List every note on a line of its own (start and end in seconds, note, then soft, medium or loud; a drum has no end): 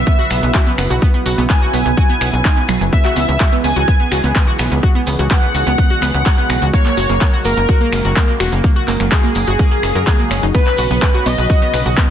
0.00 2.89 C#3 medium
0.00 2.89 F#3 medium
0.00 2.89 B3 medium
0.00 4.79 E4 medium
0.00 2.89 B4 medium
0.00 0.69 E5 medium
0.00 0.69 E5 loud
0.06 0.11 B3 medium
0.06 kick loud
0.06 closed hi-hat medium
0.06 maracas soft
0.19 0.22 F#4 loud
0.19 closed hi-hat soft
0.30 0.40 B1 loud
0.30 0.35 B3 loud
0.30 finger snap medium
0.30 open hi-hat loud
0.30 maracas medium
0.43 0.52 B1 medium
0.43 0.47 B3 medium
0.43 closed hi-hat soft
0.43 maracas medium
0.54 0.57 F#4 loud
0.54 kick loud
0.54 clap loud
0.54 closed hi-hat medium
0.54 maracas soft
0.67 0.71 B3 loud
0.67 closed hi-hat soft
0.78 0.88 F#1 medium
0.78 0.83 B3 medium
0.78 finger snap medium
0.78 open hi-hat loud
0.78 maracas medium
0.90 1.00 B1 medium
0.90 0.93 F#4 loud
0.90 closed hi-hat soft
0.90 maracas medium
1.02 1.07 B3 loud
1.02 kick loud
1.02 closed hi-hat medium
1.02 maracas soft
1.14 1.18 B3 medium
1.14 closed hi-hat soft
1.26 1.36 B1 loud
1.26 1.29 F#4 loud
1.26 open hi-hat loud
1.26 maracas medium
1.38 1.47 B1 medium
1.38 1.42 B3 loud
1.38 closed hi-hat soft
1.38 maracas medium
1.50 1.54 B3 medium
1.50 2.83 G#5 loud
1.50 kick loud
1.50 clap loud
1.50 closed hi-hat medium
1.50 maracas soft
1.62 1.64 F#4 loud
1.62 closed hi-hat soft
1.73 1.83 B1 medium
1.73 1.78 B3 loud
1.73 open hi-hat loud
1.73 maracas loud
1.86 1.95 B1 medium
1.86 1.90 B3 medium
1.86 closed hi-hat soft
1.86 maracas medium
1.97 2.00 F#4 loud
1.97 kick loud
1.97 closed hi-hat medium
1.97 maracas soft
2.09 2.14 B3 loud
2.09 closed hi-hat soft
2.21 2.31 B1 loud
2.21 2.28 B3 loud
2.21 finger snap medium
2.21 open hi-hat loud
2.21 maracas loud
2.33 2.43 B1 medium
2.33 2.40 B2 medium
2.33 closed hi-hat soft
2.33 maracas medium
2.45 2.48 D#4 loud
2.45 kick loud
2.45 clap loud
2.45 closed hi-hat medium
2.45 maracas soft
2.57 2.64 B3 medium
2.57 closed hi-hat soft
2.68 2.78 B1 medium
2.68 2.73 F#3 medium
2.68 finger snap medium
2.68 open hi-hat loud
2.68 maracas loud
2.81 2.90 F#1 medium
2.81 2.83 F#3 medium
2.81 closed hi-hat soft
2.81 maracas soft
2.92 12.10 C#3 medium
2.92 6.70 E3 medium
2.92 10.50 G#3 medium
2.92 2.97 B3 medium
2.92 6.70 G#4 medium
2.92 3.55 E5 loud
2.92 kick loud
2.92 closed hi-hat medium
2.92 maracas soft
3.05 3.07 F#4 loud
3.05 clap soft
3.05 closed hi-hat soft
3.16 3.26 C#2 loud
3.16 3.21 B3 loud
3.16 open hi-hat loud
3.16 maracas medium
3.29 3.38 C#2 medium
3.29 3.33 B3 medium
3.29 closed hi-hat soft
3.29 maracas medium
3.40 3.43 F#4 loud
3.40 kick loud
3.40 clap loud
3.40 closed hi-hat medium
3.40 maracas soft
3.52 3.57 B3 loud
3.52 closed hi-hat soft
3.64 3.74 C#2 medium
3.64 3.69 B3 medium
3.64 4.50 G#5 loud
3.64 4.50 G#5 medium
3.64 open hi-hat loud
3.64 maracas medium
3.76 3.86 C#2 medium
3.76 3.79 F#4 loud
3.76 closed hi-hat soft
3.76 maracas medium
3.88 3.92 B3 loud
3.88 kick loud
3.88 closed hi-hat medium
3.88 maracas soft
4.00 4.04 B3 medium
4.00 closed hi-hat soft
4.11 4.21 C#2 loud
4.11 4.14 F#4 loud
4.11 finger snap medium
4.11 open hi-hat loud
4.11 maracas medium
4.24 4.33 C#2 medium
4.24 4.28 B3 loud
4.24 closed hi-hat soft
4.24 maracas medium
4.35 4.40 B3 medium
4.35 kick loud
4.35 clap loud
4.35 closed hi-hat medium
4.35 maracas soft
4.47 4.50 F#4 loud
4.47 closed hi-hat soft
4.59 4.69 B1 medium
4.59 4.64 B3 loud
4.59 finger snap medium
4.59 open hi-hat loud
4.59 maracas medium
4.71 4.81 C#2 medium
4.71 4.76 B3 medium
4.71 closed hi-hat soft
4.71 maracas soft
4.83 4.86 F#4 loud
4.83 12.10 F#4 medium
4.83 kick loud
4.83 closed hi-hat medium
4.83 maracas soft
4.95 5.00 B3 loud
4.95 closed hi-hat soft
5.07 5.17 C#2 loud
5.07 5.11 B3 medium
5.07 open hi-hat loud
5.07 maracas medium
5.18 5.28 C#2 medium
5.18 5.22 F#4 loud
5.18 closed hi-hat soft
5.18 maracas soft
5.30 5.35 B3 loud
5.30 6.64 F#5 loud
5.30 kick loud
5.30 clap loud
5.30 closed hi-hat medium
5.30 maracas soft
5.43 5.47 B3 medium
5.43 closed hi-hat soft
5.54 5.64 C#2 medium
5.54 5.57 F#4 loud
5.54 open hi-hat loud
5.54 maracas medium
5.66 5.76 C#2 medium
5.66 5.71 B3 loud
5.66 closed hi-hat soft
5.66 maracas soft
5.78 5.83 B3 medium
5.78 kick loud
5.78 closed hi-hat medium
5.78 maracas soft
5.90 5.93 F#4 loud
5.90 closed hi-hat soft
6.02 6.12 C#2 medium
6.02 6.07 B3 loud
6.02 finger snap medium
6.02 open hi-hat loud
6.02 maracas medium
6.14 6.24 C#2 medium
6.14 6.18 B3 medium
6.14 closed hi-hat soft
6.14 maracas medium
6.26 6.29 F#4 loud
6.26 kick loud
6.26 clap loud
6.26 closed hi-hat medium
6.26 maracas soft
6.38 6.42 B3 loud
6.38 closed hi-hat soft
6.50 6.59 B1 loud
6.50 6.54 B3 medium
6.50 finger snap medium
6.50 open hi-hat loud
6.50 maracas medium
6.62 6.71 C#2 medium
6.62 6.64 F#4 loud
6.62 closed hi-hat soft
6.62 maracas soft
6.73 12.10 F#3 medium
6.73 6.78 A#3 loud
6.73 10.51 A#3 medium
6.73 7.36 C#5 loud
6.73 kick loud
6.73 closed hi-hat medium
6.73 maracas soft
6.86 6.90 A#3 medium
6.86 clap soft
6.86 closed hi-hat soft
6.97 7.07 F#1 loud
6.97 7.00 F#4 loud
6.97 open hi-hat loud
6.97 maracas medium
7.09 7.19 F#1 medium
7.09 7.14 A#3 loud
7.09 closed hi-hat soft
7.09 maracas medium
7.21 7.26 A#3 medium
7.21 kick loud
7.21 clap loud
7.21 closed hi-hat medium
7.21 maracas soft
7.33 7.36 F#4 loud
7.33 closed hi-hat soft
7.45 7.55 F#1 medium
7.45 7.49 A#3 loud
7.45 8.31 A#4 loud
7.45 8.31 A#4 medium
7.45 open hi-hat loud
7.45 maracas medium
7.57 7.66 F#1 medium
7.57 7.61 A#3 medium
7.57 closed hi-hat soft
7.57 maracas soft
7.69 7.71 F#4 loud
7.69 kick loud
7.69 closed hi-hat medium
7.69 maracas soft
7.81 7.85 A#3 loud
7.81 closed hi-hat soft
7.92 8.02 F#1 loud
7.92 7.97 A#3 medium
7.92 finger snap medium
7.92 open hi-hat loud
7.92 maracas medium
8.05 8.14 F#1 medium
8.05 8.07 F#4 loud
8.05 closed hi-hat soft
8.05 maracas medium
8.16 8.21 A#3 loud
8.16 kick loud
8.16 clap loud
8.16 closed hi-hat medium
8.16 maracas soft
8.28 8.33 A#3 medium
8.28 closed hi-hat soft
8.40 8.50 E1 loud
8.40 8.43 F#4 loud
8.40 finger snap medium
8.40 open hi-hat loud
8.40 maracas medium
8.52 8.62 F#1 medium
8.52 8.57 A#3 loud
8.52 closed hi-hat soft
8.52 maracas medium
8.64 8.68 A#3 medium
8.64 kick loud
8.64 closed hi-hat medium
8.64 maracas soft
8.76 8.79 F#4 loud
8.76 closed hi-hat soft
8.88 8.98 F#1 loud
8.88 8.92 A#3 loud
8.88 clap soft
8.88 open hi-hat loud
8.88 maracas medium
9.00 9.09 F#1 medium
9.00 9.04 A#3 medium
9.00 finger snap medium
9.00 closed hi-hat soft
9.00 maracas soft
9.11 9.14 F#4 loud
9.11 10.45 G#4 loud
9.11 kick loud
9.11 clap loud
9.11 closed hi-hat medium
9.11 maracas soft
9.24 9.28 A#3 loud
9.24 closed hi-hat soft
9.35 9.45 F#1 medium
9.35 9.40 A#3 medium
9.35 open hi-hat loud
9.35 maracas loud
9.47 9.57 F#1 medium
9.47 9.50 F#4 loud
9.47 closed hi-hat soft
9.47 maracas soft
9.59 9.64 A#3 loud
9.59 kick loud
9.59 closed hi-hat medium
9.59 maracas soft
9.71 9.76 A#3 medium
9.71 closed hi-hat soft
9.83 9.93 F#1 loud
9.83 9.88 A#3 medium
9.83 finger snap medium
9.83 open hi-hat loud
9.83 maracas medium
9.95 10.05 F#2 medium
9.95 9.98 A#4 medium
9.95 closed hi-hat soft
9.95 maracas medium
10.07 10.11 A#3 medium
10.07 kick loud
10.07 clap loud
10.07 closed hi-hat medium
10.07 maracas soft
10.19 10.23 A#3 medium
10.19 closed hi-hat soft
10.31 10.40 F#1 medium
10.31 10.35 C#4 medium
10.31 finger snap medium
10.31 open hi-hat loud
10.31 maracas medium
10.43 10.52 F#1 medium
10.43 10.47 D#4 medium
10.43 closed hi-hat soft
10.43 maracas soft
10.54 12.10 B2 medium
10.54 10.59 B3 loud
10.54 12.10 C#4 medium
10.54 11.27 B4 loud
10.54 11.26 B4 loud
10.54 kick loud
10.54 closed hi-hat medium
10.54 ride medium
10.54 maracas soft
10.67 10.69 B4 loud
10.67 clap soft
10.67 closed hi-hat soft
10.78 10.88 B1 loud
10.78 10.81 F#4 loud
10.78 open hi-hat loud
10.78 ride medium
10.78 maracas medium
10.91 11.00 B1 medium
10.91 10.95 B3 loud
10.91 closed hi-hat soft
10.91 maracas medium
11.02 11.05 B4 loud
11.02 kick loud
11.02 clap loud
11.02 closed hi-hat medium
11.02 ride medium
11.02 maracas soft
11.14 11.17 F#4 loud
11.14 closed hi-hat soft
11.26 11.36 B1 loud
11.26 11.30 B3 loud
11.26 12.10 D#5 loud
11.26 12.10 D#5 medium
11.26 open hi-hat loud
11.26 ride medium
11.26 maracas loud
11.38 11.47 B1 medium
11.38 11.41 B4 loud
11.38 closed hi-hat soft
11.38 maracas soft
11.50 11.53 F#4 loud
11.50 kick loud
11.50 closed hi-hat medium
11.50 ride medium
11.50 maracas soft
11.62 11.66 B3 loud
11.62 closed hi-hat soft
11.74 11.83 B1 medium
11.74 11.76 B4 loud
11.74 finger snap medium
11.74 open hi-hat loud
11.74 ride medium
11.74 maracas medium
11.86 11.95 B1 medium
11.86 11.88 F#4 loud
11.86 closed hi-hat soft
11.86 maracas medium
11.97 12.02 B3 loud
11.97 kick loud
11.97 clap loud
11.97 closed hi-hat medium
11.97 ride medium
11.97 maracas soft